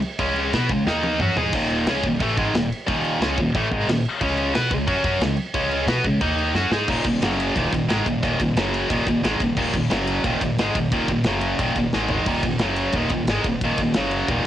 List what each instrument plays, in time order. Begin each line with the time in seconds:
0.02 crash
0.19 upright bass C#2, distorted electric guitar C#3 G#3 C#4, kick, crash
0.36 crash
0.53 upright bass B2, distorted electric guitar B3 F#4 B4, snare, crash
0.69 upright bass C#2, distorted electric guitar C#3 G#3, kick, crash
0.86 upright bass D#2, distorted electric guitar D#3 A#3 D#4, snare
1.03 high tom
1.19 upright bass F#2, distorted electric guitar F#3 C#4 F#4, mid tom
1.36 upright bass G#2, distorted electric guitar G#3 D#4 G#4, floor tom
1.52 upright bass D#1, distorted electric guitar D#2 A#2 D#3, kick, splash, crash
1.70 crash
1.86 upright bass C#2, distorted electric guitar C#3 G#3 C#4, snare, crash
2.03 upright bass D#1, distorted electric guitar D#2 A#2, kick, crash
2.20 upright bass A1, distorted electric guitar A2 E3 A3, kick, crash
2.37 upright bass G#1, distorted electric guitar G#2 D#3 G#3, kick, crash
2.54 upright bass D#1, distorted electric guitar D#2 A#2, snare, crash
2.72 crash
2.87 upright bass D#1, distorted electric guitar D#2 A#2 D#3, kick, crash
3.05 crash
3.20 upright bass C#2, distorted electric guitar C#3 G#3 C#4, snare, crash
3.37 upright bass D#1, distorted electric guitar D#2 A#2, kick, crash
3.54 upright bass A1, distorted electric guitar A2 E3 A3, kick, crash
3.71 upright bass G#1, distorted electric guitar G#2 D#3 G#3, kick, crash
3.87 upright bass D#1, distorted electric guitar D#2 A#2, snare, crash
4.05 crash
4.21 upright bass C#2, distorted electric guitar C#3 G#3 C#4, kick, crash
4.37 crash
4.55 upright bass B2, distorted electric guitar B3 F#4 B4, snare, crash
4.71 upright bass C#2, distorted electric guitar C#3 G#3, kick, crash
4.87 upright bass F#2, distorted electric guitar F#3 C#4 F#4, kick, crash
5.04 upright bass F#2, distorted electric guitar F#3 C#4 F#4, kick, crash
5.19 upright bass C#2, distorted electric guitar C#3 G#3, snare, crash
5.37 crash
5.54 upright bass C#2, distorted electric guitar C#3 G#3 C#4, kick, crash
5.71 crash
5.87 upright bass B2, distorted electric guitar B3 F#4 B4, snare, crash
6.05 upright bass C#2, distorted electric guitar C#3 G#3, kick, crash
6.21 upright bass D#2, distorted electric guitar D#3 A#3 D#4, kick, crash
6.38 crash
6.54 upright bass F#2, distorted electric guitar F#3 C#4 F#4, snare
6.71 upright bass G#2, distorted electric guitar G#3 D#4 G#4, snare
6.88 upright bass D#1, distorted electric guitar D#2 A#2 D#3, kick, crash
7.04 upright bass D#1, distorted electric guitar D#2 A#2, kick, ride
7.21 upright bass F#1, distorted electric guitar F#2 C#3 F#3, snare, ride
7.40 ride
7.56 upright bass D#1, distorted electric guitar D#2 A#2 D#3, kick, ride
7.72 upright bass D#1, distorted electric guitar D#2 A#2, kick, ride
7.88 upright bass G#1, distorted electric guitar G#2 D#3 G#3, snare, ride
8.06 upright bass D#1, distorted electric guitar D#2 A#2, kick, ride
8.23 upright bass D#1, distorted electric guitar D#2 A#2 D#3, kick, ride
8.40 upright bass D#1, distorted electric guitar D#2 A#2, kick, ride
8.56 upright bass F#1, distorted electric guitar F#2 C#3 F#3, snare, ride
8.74 ride
8.90 upright bass D#1, distorted electric guitar D#2 A#2 D#3, kick, ride
9.06 upright bass D#1, distorted electric guitar D#2 A#2, kick, ride
9.22 upright bass G#1, distorted electric guitar G#2 D#3 G#3, snare, ride
9.40 upright bass D#1, distorted electric guitar D#2 A#2, kick, ride
9.56 upright bass D#1, distorted electric guitar D#2 A#2 D#3, kick, crash
9.73 upright bass D#1, distorted electric guitar D#2 A#2, kick, ride
9.90 upright bass F#1, distorted electric guitar F#2 C#3 F#3, snare, ride
10.07 ride
10.24 upright bass D#1, distorted electric guitar D#2 A#2 D#3, kick, ride
10.41 upright bass D#1, distorted electric guitar D#2 A#2, kick, ride
10.57 upright bass G#1, distorted electric guitar G#2 D#3, snare, ride
10.61 distorted electric guitar G#3
10.75 upright bass D#1, distorted electric guitar D#2 A#2, kick, ride
10.91 upright bass D#1, distorted electric guitar D#2 A#2 D#3, kick, ride
11.08 upright bass D#1, distorted electric guitar D#2 A#2, kick, ride
11.24 upright bass F#1, distorted electric guitar F#2 C#3 F#3, snare, ride
11.41 ride
11.59 upright bass D#1, distorted electric guitar D#2 A#2 D#3, kick, ride
11.75 upright bass D#1, distorted electric guitar D#2 A#2, kick, ride
11.93 upright bass G#1, distorted electric guitar G#2 D#3 G#3, snare
12.08 floor tom
12.26 upright bass D#1, distorted electric guitar D#2 A#2 D#3, kick, crash
12.43 upright bass D#1, distorted electric guitar D#2 A#2, kick, ride
12.59 upright bass F#1, distorted electric guitar F#2 C#3 F#3, snare, ride
12.76 ride
12.92 upright bass D#1, distorted electric guitar D#2 A#2, kick, ride
12.97 distorted electric guitar D#3
13.09 upright bass D#1, distorted electric guitar D#2 A#2, kick, ride
13.27 upright bass G#1, distorted electric guitar G#2 D#3 G#3, snare, ride
13.44 upright bass D#1, distorted electric guitar D#2 A#2, kick, ride
13.61 upright bass D#1, distorted electric guitar D#2 A#2 D#3, kick, ride
13.77 upright bass D#1, distorted electric guitar D#2 A#2, kick, ride
13.94 upright bass F#1, distorted electric guitar F#2 C#3 F#3, snare, ride
14.11 ride
14.28 upright bass D#1, distorted electric guitar D#2 A#2 D#3, kick, ride